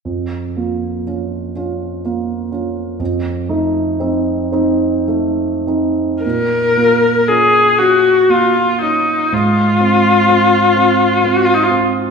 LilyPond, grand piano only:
\new Staff \with { instrumentName = "Grand piano" } { \time 6/8 \key bes \minor \tempo 4. = 40 f,8 <bes f'>8 <des' f'>8 <des' f'>8 <bes f'>8 <des' f'>8 | f,8 <a ees'>8 <c' ees'>8 <c' ees'>8 <a ees'>8 <c' ees'>8 | bes,8 <bes f'>8 <des' f'>8 <des' f'>8 <bes f'>8 <des' f'>8 | aes,8 <c' f'>8 <c' f'>8 <c' f'>8 <c' f'>8 <c' f'>8 | }